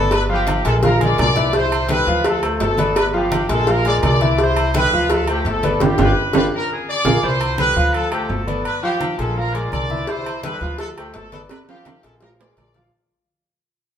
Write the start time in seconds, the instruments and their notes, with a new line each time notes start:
Already playing: upright bass G1, grand piano B3 B4 D5, trumpet section A4
0.11 trumpet section B4, cowbell, high conga, low agogo
0.29 grand piano F3 F4 F5, trumpet section G4, high conga
0.47 cowbell, high conga, low agogo
0.65 upright bass A#1, grand piano G#3 G#4 A#4, trumpet section A4, cowbell, high conga, low agogo
0.83 grand piano F3 F4 F5, trumpet section A#4, cowbell, high conga
1.01 grand piano G#3 G#4 A#4, trumpet section D5, high conga, low agogo
1.18 upright bass C2, trumpet section D5, cowbell, low conga, low timbale, low agogo
1.36 grand piano E3 E4 E5, cowbell, low conga
1.53 grand piano E3 E4 E5, trumpet section C5, cowbell, high conga
1.72 high conga, low agogo
1.89 grand piano G3 G4 A4, trumpet section B4, cowbell, high conga, low agogo
2.07 upright bass D2, grand piano F3 F4 F5, high conga
2.24 trumpet section A4, cowbell, high conga, low agogo
2.42 grand piano A3 A4 C5, high conga, low agogo
2.60 upright bass G1, trumpet section A4, cowbell, high conga, low timbale
2.78 grand piano B3 B4 D5, cowbell, high conga, low agogo
2.96 trumpet section B4, cowbell, high conga, low agogo
3.14 grand piano F3 F4 F5, trumpet section G4, high conga
3.32 cowbell, high conga, low agogo
3.49 upright bass A#1, grand piano G#3 G#4 A#4, trumpet section A4, cowbell, high conga, low agogo
3.67 grand piano F3 F4 F5, trumpet section A#4, cowbell, high conga
3.85 grand piano G#3 G#4 A#4, trumpet section D5, high conga, low agogo
4.02 upright bass C2, trumpet section D5, cowbell, high conga, low timbale, low agogo
4.21 grand piano E3 E4 E5, cowbell, high conga
4.38 grand piano E3 E4 E5, trumpet section C5, cowbell, high conga
4.57 high conga, low agogo
4.74 grand piano G3 G4 A4, trumpet section B4, cowbell, high conga, low agogo
4.92 upright bass D2, grand piano F3 F4 F5, high conga
5.10 trumpet section A4, cowbell, high conga, low agogo
5.28 grand piano A3 A4 C5, trumpet section G4, high conga, low agogo
5.45 upright bass G1, trumpet section A4, cowbell, high conga
5.63 grand piano B3 B4 D5, cowbell, high conga, low agogo
5.80 upright bass G1, grand piano D4 F4 G4, trumpet section G4, cowbell, high conga, high timbale
5.98 upright bass G1, grand piano D4 F4 G4, trumpet section B4, cowbell, high conga, high timbale
6.33 upright bass G1, grand piano D4 F4 G4, trumpet section B4, cowbell, high conga, high timbale
6.55 trumpet section A#4
6.73 trumpet section G#4
6.89 trumpet section D5
7.05 upright bass A#1, grand piano F4 G#4 A#4, cowbell, high conga, high timbale
7.23 upright bass C2, grand piano E3 E4 E5, trumpet section C5, high conga
7.41 high conga, low agogo
7.58 grand piano G3 G4 A4, trumpet section B4, high conga, low agogo
7.76 upright bass D2, grand piano F3 F4 F5, high conga
7.94 trumpet section A4, high conga, low agogo
8.11 grand piano A3 A4 C5, trumpet section G4, high conga, low agogo
8.29 upright bass G1, trumpet section A4, high conga, low timbale
8.47 grand piano B3 B4 D5, high conga, low agogo
8.65 trumpet section B4, high conga, low agogo
8.83 grand piano F3 F4 F5, trumpet section G4, high conga
9.01 high conga, low agogo
9.18 upright bass A#1, grand piano G#3 G#4 A#4, trumpet section A4, low agogo
9.36 grand piano F3 F4 F5, trumpet section A#4, high conga
9.54 grand piano G#3 G#4 A#4, trumpet section D5, high conga, low agogo
9.72 upright bass C2, trumpet section D5, high conga, low agogo
9.90 grand piano E3 E4 E5, high conga
10.07 grand piano E3 E4 E5, trumpet section C5, cowbell
10.26 high conga, low agogo
10.43 grand piano G3 G4 A4, trumpet section B4, cowbell, high conga, low agogo
10.61 upright bass D2, grand piano F3 F4 F5, high conga
10.78 trumpet section A4, cowbell, high conga, low agogo
10.96 grand piano A3 A4 C5, trumpet section G4, high conga, low agogo
11.14 upright bass G1, trumpet section A4, cowbell, high conga, low timbale
11.32 grand piano B3 B4 D5, trumpet section A4, cowbell, high conga, low agogo
11.49 trumpet section B4, cowbell, high conga, high timbale, low agogo
11.68 grand piano F3 F4 F5, trumpet section G4, high conga, high timbale
11.85 cowbell, high conga, high timbale, low agogo
12.03 upright bass A#1, grand piano G#3 G#4 A#4, trumpet section A4, cowbell, high conga, low agogo
12.21 grand piano F3 F4 F5, trumpet section A#4, cowbell, high conga, low timbale
12.39 grand piano G#3 G#4 A#4, trumpet section D5, high conga, low timbale, low agogo
12.57 upright bass A#1, trumpet section D5, cowbell, high conga, low timbale, low agogo
12.74 grand piano F3 F4 F5, cowbell, high conga, low timbale